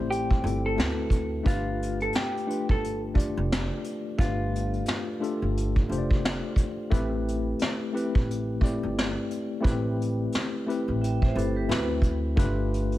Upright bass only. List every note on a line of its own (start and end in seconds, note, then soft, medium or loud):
0.00 0.38 A1 medium
0.44 0.74 G1 medium
0.78 1.38 D2 medium
1.46 2.06 G1 medium
2.69 3.30 G1 medium
3.37 3.68 F1 medium
4.19 4.79 G1 loud
5.42 5.84 G1 medium
5.89 6.38 F1 medium
6.92 7.52 A1 medium
8.15 8.75 A1 medium
8.83 9.13 G1 medium
9.65 10.25 A1 loud
10.88 11.30 A1 medium
11.36 11.65 G1 medium
11.69 12.39 D2 medium
12.37 12.97 G1 loud